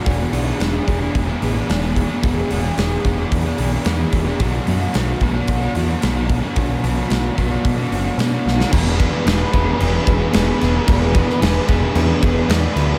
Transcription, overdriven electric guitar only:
\new Staff \with { instrumentName = "Overdriven electric guitar" } { \time 4/4 \key e \mixolydian \tempo 4 = 111 <e b d' gis'>8 <e b d' gis'>16 <b d' gis'>16 <e b d' gis'>8 <e b d' gis'>16 <b d' gis'>8 <b d' gis'>16 <e b d' gis'>16 <b d' gis'>16 <e b d' gis'>16 <b d' gis'>8 <b d' gis'>16 | <e b d' gis'>8 <e b d' gis'>16 <b d' gis'>16 <e b d' gis'>8 <e b d' gis'>16 <b d' gis'>8 <b d' gis'>16 <e b d' gis'>16 <b d' gis'>16 <e b d' gis'>16 <b d' gis'>8 <b d' gis'>16 | <b, fis b d' fis'>8 <fis b d' fis'>16 <b d' fis'>16 <b, fis b d' fis'>8 <fis b d' fis'>16 <b d' fis'>8 <b d' fis'>16 <fis b d' fis'>16 <b d' fis'>16 <b, fis b d' fis'>16 <b d' fis'>8 <b d' fis'>16 | <b, fis b d' fis'>8 <fis b d' fis'>16 <b d' fis'>16 <b, fis b d' fis'>8 <fis b d' fis'>16 <b d' fis'>8 <b d' fis'>16 <fis b d' fis'>16 <b d' fis'>16 <b, fis b d' fis'>16 <b d' fis'>8 <b d' fis'>16 |
<e b d' gis' b'>8 <d' gis' b'>8 <b d' gis' b'>8 <d' gis' b'>8 <e b d' gis' b'>8 <d' gis' b'>8 <b d' gis' b'>8 <d' gis' b'>8 | <e b d' gis' b'>8 <d' gis' b'>8 <b d' gis' b'>8 <d' gis' b'>8 <e b d' gis' b'>8 <d' gis' b'>8 <b d' gis' b'>8 <d' gis' b'>8 | }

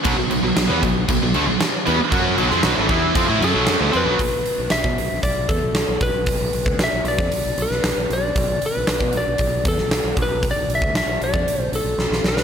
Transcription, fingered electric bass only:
\new Staff \with { instrumentName = "Fingered electric bass" } { \clef bass \time 4/4 \key b \minor \tempo 4 = 116 b,,16 b,,16 b,,16 b,,16 b,,16 e,16 b,,8 b,,16 b,,16 d,16 b,,16 r8 e,16 r16 | fis,8 b,,16 eis,16 b,,16 a,,16 e,8 eis,16 a,16 fis,16 b,,16 fis,16 d,16 eis,16 b,,16 | b,,8 r16 b,,16 b,,16 b,16 b,,16 b,,16 b,,8 e,16 b,,8 b,,16 b,,16 b,,16~ | b,,16 b,,16 b,,16 d,16 b,,16 b,,16 b,,16 eis,16 b,,16 b,,16 b,,16 b,,16 b,,16 b,,16 b,,8 |
b,,8 r16 b,,16 b,,16 b,16 b,,16 b,,16 b,,8 e,16 b,,8 b,,16 b,,16 b,,16~ | b,,16 b,,16 b,,16 d,16 b,,16 b,,16 b,,16 eis,16 b,,16 b,,16 b,,16 b,,16 b,,16 b,,16 b,,8 | }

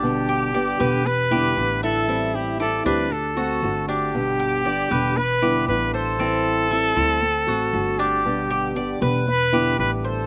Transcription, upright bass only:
\new Staff \with { instrumentName = "Upright bass" } { \clef bass \time 4/4 \key g \major \tempo 4 = 117 g,,4. e,,4. a,,4~ | a,,4. d,4. g,,4~ | g,,4. e,,4. a,,4~ | a,,4. d,4 a,,8 g,,4~ |
g,,4. e,,4. a,,4 | }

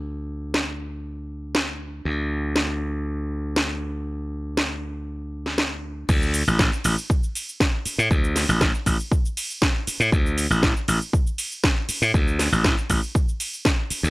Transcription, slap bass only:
\new Staff \with { instrumentName = "Slap bass" } { \clef bass \time 4/4 \key c \mixolydian \tempo 4 = 119 d,1 | d,1~ | d,1 | d,8. a,,16 a,,16 r16 a,,16 r2 a,16 |
d,8. a,,16 a,,16 r16 a,,16 r2 a,16 | d,8. a,,16 a,,16 r16 a,,16 r2 a,16 | d,8. a,,16 a,,16 r16 a,,16 r2 d,16 | }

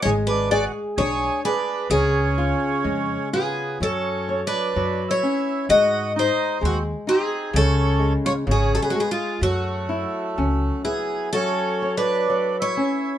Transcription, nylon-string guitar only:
\new Staff \with { instrumentName = "Nylon-string guitar" } { \time 2/4 \key fis \minor \tempo 4 = 64 gis8 gis'8 d'8 gis'8 | cis8 eis'8 gis8 eis'8 | fis8 cis''8 fis8 cis'8 | gis8 dis'8 gis8 dis'8 |
cis8 gis8 cis8 gis8 | fis8 e'8 cis'8 e'8 | fis8 cis''8 fis8 cis'8 | }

